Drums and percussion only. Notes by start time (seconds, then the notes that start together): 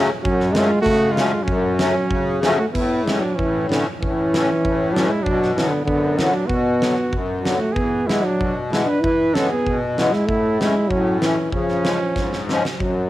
0.25 kick
0.40 snare
0.55 snare, hi-hat pedal
0.86 kick
1.17 snare, hi-hat pedal
1.48 kick
1.79 snare, hi-hat pedal
2.11 kick
2.43 snare, hi-hat pedal
2.75 kick, crash
3.08 snare
3.39 kick
3.72 snare
4.02 kick
4.34 snare
4.65 kick
4.96 snare
5.26 kick
5.43 snare
5.58 snare
5.88 kick
6.19 snare
6.50 kick
6.82 snare
7.13 kick
7.45 snare
7.76 kick
8.09 snare
8.41 kick
8.73 snare
9.04 kick
9.36 snare
9.67 kick
9.98 snare
10.13 snare
10.29 kick
10.61 snare
10.91 kick
11.22 snare
11.52 kick
11.69 snare
11.85 snare
12.16 kick, snare
12.33 snare
12.49 snare
12.65 snare
12.80 kick